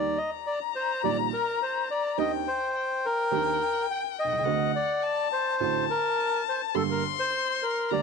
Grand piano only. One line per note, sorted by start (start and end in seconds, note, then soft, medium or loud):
0.00 0.12 D#2 medium
0.00 0.12 D#3 medium
0.00 0.12 G3 medium
0.00 0.12 A#3 soft
0.00 0.12 G4 medium
1.03 1.28 A#1 medium
1.03 1.28 A#2 medium
1.03 1.28 D#3 medium
1.03 1.28 G3 soft
1.03 1.28 A#3 soft
1.03 1.28 G4 medium
2.18 2.42 D#2 medium
2.18 2.42 D#3 medium
2.18 2.42 C4 medium
2.18 2.42 D4 soft
2.18 2.42 G4 medium
3.31 3.56 D#2 medium
3.31 3.56 D#3 medium
3.31 3.56 C4 soft
3.31 3.56 D4 medium
3.31 3.56 G4 medium
4.25 4.32 B1 soft
4.32 4.39 C2 soft
4.39 4.46 C#2 medium
4.46 4.70 D2 medium
4.46 4.70 D3 medium
4.46 4.70 A3 medium
4.46 4.70 C4 medium
4.46 4.70 F#4 medium
5.60 5.85 A1 medium
5.60 5.85 A2 medium
5.60 5.84 D3 medium
5.60 5.85 A3 soft
5.60 5.85 C4 medium
5.60 5.85 F#4 medium
6.74 6.99 G1 medium
6.74 6.99 G2 medium
6.74 6.99 D3 medium
6.74 6.99 G3 medium
6.74 6.99 A#3 soft
6.74 6.99 G4 medium
7.91 8.02 D2 medium
7.91 8.02 D3 medium
7.91 8.02 G3 soft
7.91 8.02 A#3 soft
7.91 8.02 G4 medium